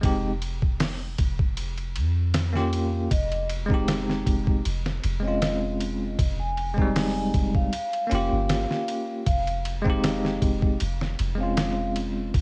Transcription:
0.01 808-style bass F1, tine electric piano G#3 C4 D#4, kick, ride
0.05 tine electric piano G4
0.42 ride
0.62 kick
0.80 snare, open hi-hat
1.18 808-style bass F1, kick, ride
1.39 kick
1.57 ride
1.78 ride
1.96 808-style bass F2, ride
2.34 snare, ride
2.53 tine electric piano A#3 C#4 F4 G4, snare
2.73 ride
3.11 808-style bass F1, vibraphone D#5, kick, ride
3.32 ride
3.49 ride
3.66 tine electric piano G#3 C4
3.70 tine electric piano D#4 G4, kick
3.88 snare, ride
4.09 snare
4.26 808-style bass F1, kick, ride
4.47 kick
4.65 808-style bass F1, ride
4.86 snare
5.04 808-style bass F1, ride
5.20 tine electric piano G#3 C4
5.24 tine electric piano C#4 F4, vibraphone D#5
5.42 snare, ride
5.80 ride
6.19 808-style bass F1, kick, ride
6.40 vibraphone G#5
6.57 ride
6.74 tine electric piano G#3 C4, kick
6.79 tine electric piano G3 D#4
6.95 vibraphone G#5, snare, open hi-hat
7.34 808-style bass F1, kick, ride
7.55 vibraphone F5, kick
7.73 ride
7.93 ride
8.07 tine electric piano A#3 C#4
8.11 808-style bass F1, tine electric piano F4 G4, ride
8.32 808-style bass G1
8.49 snare, ride
8.71 snare
8.88 ride
9.26 808-style bass F1, vibraphone F5, kick, ride
9.47 ride
9.65 ride
9.82 tine electric piano G#3 C4, kick
9.87 tine electric piano D#4 G4
10.04 snare, ride
10.25 snare
10.42 808-style bass F1, kick, ride
10.62 kick
10.80 808-style bass F1, ride
11.01 snare
11.19 808-style bass F1, ride
11.35 tine electric piano G#3 C4
11.40 tine electric piano C#4 F4, vibraphone F5
11.57 snare, ride
11.96 ride
12.34 808-style bass F1, kick, ride

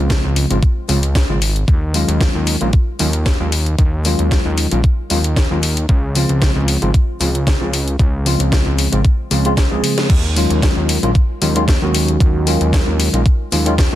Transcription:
Already playing: analog synth bass C#2, tine electric piano C#3 F3 G#3 C4 F4
0.10 kick, snare, closed hi-hat
0.24 analog synth bass C#2
0.36 open hi-hat
0.50 analog synth bass G#1, tine electric piano C#3 F3 G#3 C4 F4, closed hi-hat
0.63 kick, closed hi-hat
0.89 analog synth bass C#2, tine electric piano C#3 F3 G#3 C4 F4, open hi-hat
1.03 closed hi-hat
1.15 kick, snare, closed hi-hat
1.29 analog synth bass G#1, tine electric piano C#3 F3 G#3 C4 F4
1.42 open hi-hat
1.56 closed hi-hat
1.68 analog synth bass D#2, kick, closed hi-hat
1.93 tine electric piano D#3 F#3 G#3 C#4 F4, open hi-hat
2.08 analog synth bass D#2, closed hi-hat
2.21 kick, snare, closed hi-hat
2.35 analog synth bass D#2
2.47 open hi-hat
2.61 analog synth bass A#1, tine electric piano D#3 F#3 G#3 C#4 F4, closed hi-hat
2.73 kick, closed hi-hat
2.99 analog synth bass D#2, tine electric piano D#3 F#3 G#3 C#4 F4, open hi-hat
3.13 closed hi-hat
3.26 kick, snare, closed hi-hat
3.40 analog synth bass D#2, tine electric piano D#3 F#3 G#3 C#4 F4
3.52 open hi-hat
3.66 closed hi-hat
3.79 analog synth bass D#2, kick, closed hi-hat
4.04 tine electric piano D#3 F#3 G#3 C#4 F4, open hi-hat
4.19 analog synth bass D#2, closed hi-hat
4.31 kick, snare, closed hi-hat
4.45 analog synth bass D#2
4.58 open hi-hat
4.71 analog synth bass A#1, tine electric piano D#3 F#3 G#3 C#4 F4, closed hi-hat
4.84 kick, closed hi-hat
5.10 analog synth bass D#2, tine electric piano D#3 F#3 G#3 C#4 F4, open hi-hat
5.24 closed hi-hat
5.36 kick, snare, closed hi-hat
5.50 analog synth bass D#2, tine electric piano D#3 F#3 G#3 C#4 F4
5.63 open hi-hat
5.77 closed hi-hat
5.89 analog synth bass C#2, kick, closed hi-hat
6.15 tine electric piano C#3 F3 G#3 C4 F4, open hi-hat
6.29 analog synth bass C#2, closed hi-hat
6.42 kick, snare, closed hi-hat
6.56 analog synth bass C#2
6.68 open hi-hat
6.82 analog synth bass G#1, tine electric piano C#3 F3 G#3 C4 F4, closed hi-hat
6.94 kick, closed hi-hat
7.20 analog synth bass C#2, tine electric piano C#3 F3 G#3 C4 F4, open hi-hat
7.35 closed hi-hat
7.47 kick, snare, closed hi-hat
7.60 analog synth bass C#2, tine electric piano C#3 F3 G#3 C4 F4
7.73 open hi-hat
7.88 closed hi-hat
7.99 analog synth bass C#2, kick, closed hi-hat
8.25 tine electric piano C#3 F3 G#3 C4 F4, open hi-hat
8.40 analog synth bass C#2, closed hi-hat
8.52 kick, snare, closed hi-hat
8.66 analog synth bass C#2
8.79 open hi-hat
8.92 analog synth bass G#1, tine electric piano C#3 F3 G#3 C4 F4, closed hi-hat
9.05 kick, closed hi-hat
9.31 analog synth bass C#2, tine electric piano C#3 F3 G#3 C4 F4, open hi-hat
9.45 tine electric piano C#3 F3 G#3 C4 F4, closed hi-hat
9.57 kick, snare, closed hi-hat
9.71 analog synth bass C#2, tine electric piano C#3 F3 G#3 C4 G#4
9.84 open hi-hat
9.98 snare, closed hi-hat
10.10 analog synth bass D#2, kick, closed hi-hat, crash
10.35 tine electric piano D#3 F#3 G#3 C#4 F4, open hi-hat
10.50 analog synth bass D#2, closed hi-hat
10.62 kick, snare, closed hi-hat
10.77 analog synth bass D#2
10.89 open hi-hat
11.03 analog synth bass A#1, tine electric piano D#3 F#3 G#3 C#4 F4, closed hi-hat
11.15 kick, closed hi-hat
11.41 analog synth bass D#2, tine electric piano D#3 F#3 G#3 C#4 F4, open hi-hat
11.55 tine electric piano D#3 F#3 G#3 C#4 F4, closed hi-hat
11.68 kick, snare, closed hi-hat
11.81 analog synth bass D#2, tine electric piano D#3 F#3 G#3 C#4 F#4
11.95 open hi-hat
12.08 closed hi-hat
12.20 analog synth bass D#2, kick, closed hi-hat
12.46 tine electric piano D#3 F#3 G#3 C#4 F4, open hi-hat
12.61 analog synth bass D#2, closed hi-hat
12.73 kick, snare, closed hi-hat
12.87 analog synth bass D#2
13.00 open hi-hat
13.13 analog synth bass A#1, tine electric piano D#3 F#3 G#3 C#4 F4, closed hi-hat
13.26 kick, closed hi-hat
13.52 analog synth bass D#2, tine electric piano D#3 F#3 G#3 C#4 F4, open hi-hat
13.66 tine electric piano D#3 F#3 G#3 C#4 F4, closed hi-hat
13.78 kick, snare, closed hi-hat
13.92 tine electric piano D#3

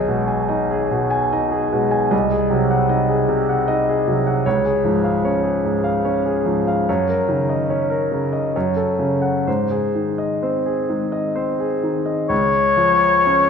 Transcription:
Already playing: grand piano B1 G#4 D#5
0.08 grand piano B2 G#3
0.28 grand piano G#5
0.49 grand piano D#4 D#5
0.71 grand piano G#4
0.91 grand piano B2
1.10 grand piano G#5
1.33 grand piano D#4 D#5
1.52 grand piano G#4
1.72 grand piano B2 G#3
1.91 grand piano G#5
2.11 grand piano C2 D#5
2.31 grand piano G#4
2.50 grand piano C3 F#3
2.71 grand piano F#5
2.89 grand piano D#4 D#5
3.09 grand piano G#4
3.29 grand piano C3
3.49 grand piano F#5
3.68 grand piano D#4 D#5
3.89 grand piano G#4
4.08 grand piano C3 F#3
4.27 grand piano F#5
4.46 grand piano C#2 C#5
4.65 grand piano G#4
4.84 grand piano G#2 F3
5.04 grand piano F5
5.25 grand piano C#4 C#5
5.43 grand piano G#4
5.64 grand piano G#2
5.84 grand piano F5
6.05 grand piano C#4 C#5
6.26 grand piano G#4
6.46 grand piano G#2 F3
6.67 grand piano F5
6.89 grand piano F#2 C#5
7.09 grand piano A#4
7.28 grand piano C#3 D#3
7.49 grand piano D#5
7.70 grand piano C#4 C#5
7.90 grand piano A#4
8.12 grand piano C#3
8.33 grand piano D#5
8.56 grand piano F#2 C#5
8.76 grand piano A4
8.99 grand piano C#3 C#4
9.22 grand piano F#5
9.47 grand piano G#2 C5
9.71 grand piano G#4
9.95 grand piano D#3
10.18 grand piano D#5
10.42 grand piano C4 C5
10.66 grand piano G#4
10.89 grand piano D#3 G#3
11.12 grand piano D#5
11.35 grand piano C4 C5
11.60 grand piano G#4
11.83 grand piano D#3
12.06 grand piano D#5
12.29 grand piano C#2, oboe C#5
12.77 grand piano F3
13.26 grand piano C#4

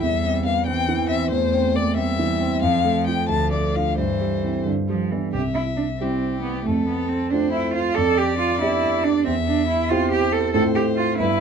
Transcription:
0.02 grand piano E2, cello G3, violin E5
0.25 grand piano C4
0.46 grand piano B3, violin F5
0.66 cello E3, grand piano C4, violin G5
0.89 grand piano E3
1.10 grand piano C4, violin E5
1.31 grand piano E2, cello A3, violin C5
1.54 grand piano C4
1.75 grand piano A#3, violin D5
1.97 cello G3, grand piano C4, violin E5
2.19 grand piano E3
2.41 grand piano C4
2.62 grand piano F2, cello F3, violin F5
2.84 grand piano A3
3.07 grand piano C4 F4, violin G5
3.28 grand piano D2, cello F3, violin A5
3.52 grand piano A3, violin D5
3.75 grand piano D4 F4, violin F5
3.98 grand piano G2, cello E3, violin C5
4.21 grand piano G3
4.44 grand piano C4 E4
4.65 grand piano G2, cello D3
4.88 cello F3, grand piano G3
5.11 cello E3, grand piano B3 D4
5.33 grand piano C2, cello G4, violin E5
5.54 cello E4
5.77 cello D4
5.99 grand piano G3 C4 E4, cello C4, violin G4
6.43 cello B3
6.65 grand piano F2, cello A3, violin A4
6.88 cello B3
7.09 cello C4
7.30 grand piano A3 C4 F4, cello D4, violin C5
7.52 cello E4
7.74 cello F4
7.95 grand piano F2, cello A4, violin D5
8.17 cello G4
8.39 cello F4
8.61 grand piano B3 D4 G4, cello E4
9.04 cello D4
9.25 grand piano E2, cello C4, violin E5
9.47 cello D4
9.68 cello E4
9.89 grand piano C4 E4 G4, cello F4, violin C5
10.11 cello G4
10.33 cello A4
10.54 grand piano A2 C4 F4 A4, cello A4, violin C5
10.75 cello G4
10.96 cello F4
11.18 grand piano G2 B3 E4 B4, cello E4, violin B4

